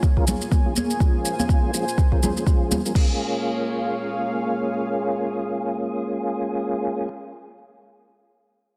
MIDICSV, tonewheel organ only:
0, 0, Header, 1, 2, 480
1, 0, Start_track
1, 0, Key_signature, -5, "minor"
1, 0, Tempo, 487805
1, 988, Time_signature, 4, 2, 24, 8
1, 8629, End_track
2, 0, Start_track
2, 0, Title_t, "Tonewheel organ"
2, 0, Program_c, 0, 16
2, 170, Note_on_c, 0, 53, 93
2, 170, Note_on_c, 0, 61, 86
2, 170, Note_on_c, 0, 65, 83
2, 170, Note_on_c, 0, 70, 102
2, 171, Note_on_c, 0, 56, 87
2, 247, Note_off_c, 0, 65, 0
2, 248, Note_off_c, 0, 53, 0
2, 248, Note_off_c, 0, 56, 0
2, 248, Note_off_c, 0, 61, 0
2, 248, Note_off_c, 0, 70, 0
2, 647, Note_on_c, 0, 56, 69
2, 647, Note_on_c, 0, 61, 71
2, 648, Note_on_c, 0, 53, 74
2, 648, Note_on_c, 0, 65, 69
2, 648, Note_on_c, 0, 68, 81
2, 726, Note_off_c, 0, 56, 0
2, 726, Note_off_c, 0, 61, 0
2, 727, Note_off_c, 0, 53, 0
2, 727, Note_off_c, 0, 65, 0
2, 727, Note_off_c, 0, 68, 0
2, 988, Note_on_c, 0, 68, 83
2, 989, Note_on_c, 0, 61, 71
2, 990, Note_on_c, 0, 53, 76
2, 990, Note_on_c, 0, 56, 66
2, 991, Note_on_c, 0, 65, 68
2, 1334, Note_off_c, 0, 61, 0
2, 1334, Note_off_c, 0, 68, 0
2, 1335, Note_off_c, 0, 53, 0
2, 1335, Note_off_c, 0, 56, 0
2, 1335, Note_off_c, 0, 65, 0
2, 1369, Note_on_c, 0, 53, 74
2, 1369, Note_on_c, 0, 56, 70
2, 1369, Note_on_c, 0, 65, 72
2, 1371, Note_on_c, 0, 61, 72
2, 1371, Note_on_c, 0, 68, 83
2, 1685, Note_off_c, 0, 53, 0
2, 1685, Note_off_c, 0, 56, 0
2, 1685, Note_off_c, 0, 61, 0
2, 1685, Note_off_c, 0, 65, 0
2, 1686, Note_off_c, 0, 68, 0
2, 1710, Note_on_c, 0, 61, 70
2, 1711, Note_on_c, 0, 56, 71
2, 1711, Note_on_c, 0, 65, 66
2, 1712, Note_on_c, 0, 53, 76
2, 1712, Note_on_c, 0, 68, 84
2, 1818, Note_off_c, 0, 61, 0
2, 1819, Note_off_c, 0, 53, 0
2, 1819, Note_off_c, 0, 56, 0
2, 1819, Note_off_c, 0, 65, 0
2, 1819, Note_off_c, 0, 68, 0
2, 2089, Note_on_c, 0, 56, 81
2, 2089, Note_on_c, 0, 65, 84
2, 2090, Note_on_c, 0, 61, 83
2, 2090, Note_on_c, 0, 70, 100
2, 2091, Note_on_c, 0, 53, 91
2, 2167, Note_off_c, 0, 56, 0
2, 2167, Note_off_c, 0, 61, 0
2, 2167, Note_off_c, 0, 65, 0
2, 2167, Note_off_c, 0, 70, 0
2, 2168, Note_off_c, 0, 53, 0
2, 2188, Note_on_c, 0, 53, 84
2, 2188, Note_on_c, 0, 61, 78
2, 2190, Note_on_c, 0, 56, 76
2, 2190, Note_on_c, 0, 68, 97
2, 2191, Note_on_c, 0, 65, 79
2, 2297, Note_off_c, 0, 53, 0
2, 2297, Note_off_c, 0, 61, 0
2, 2298, Note_off_c, 0, 56, 0
2, 2298, Note_off_c, 0, 68, 0
2, 2299, Note_off_c, 0, 65, 0
2, 2327, Note_on_c, 0, 53, 91
2, 2327, Note_on_c, 0, 61, 82
2, 2328, Note_on_c, 0, 56, 82
2, 2328, Note_on_c, 0, 68, 99
2, 2329, Note_on_c, 0, 65, 85
2, 2404, Note_off_c, 0, 53, 0
2, 2404, Note_off_c, 0, 56, 0
2, 2404, Note_off_c, 0, 61, 0
2, 2404, Note_off_c, 0, 68, 0
2, 2405, Note_off_c, 0, 65, 0
2, 2427, Note_on_c, 0, 68, 103
2, 2428, Note_on_c, 0, 53, 95
2, 2428, Note_on_c, 0, 61, 89
2, 2429, Note_on_c, 0, 56, 83
2, 2429, Note_on_c, 0, 65, 85
2, 2773, Note_off_c, 0, 68, 0
2, 2774, Note_off_c, 0, 53, 0
2, 2774, Note_off_c, 0, 56, 0
2, 2774, Note_off_c, 0, 61, 0
2, 2774, Note_off_c, 0, 65, 0
2, 2805, Note_on_c, 0, 61, 73
2, 2806, Note_on_c, 0, 65, 73
2, 2808, Note_on_c, 0, 53, 82
2, 2808, Note_on_c, 0, 56, 78
2, 2808, Note_on_c, 0, 70, 95
2, 2883, Note_off_c, 0, 61, 0
2, 2883, Note_off_c, 0, 65, 0
2, 2884, Note_off_c, 0, 53, 0
2, 2884, Note_off_c, 0, 56, 0
2, 2884, Note_off_c, 0, 70, 0
2, 2907, Note_on_c, 0, 56, 77
2, 2907, Note_on_c, 0, 58, 71
2, 2907, Note_on_c, 0, 68, 90
2, 2908, Note_on_c, 0, 61, 70
2, 2908, Note_on_c, 0, 65, 72
2, 6976, Note_off_c, 0, 58, 0
2, 6976, Note_off_c, 0, 68, 0
2, 6977, Note_off_c, 0, 56, 0
2, 6978, Note_off_c, 0, 61, 0
2, 6978, Note_off_c, 0, 65, 0
2, 8629, End_track
0, 0, End_of_file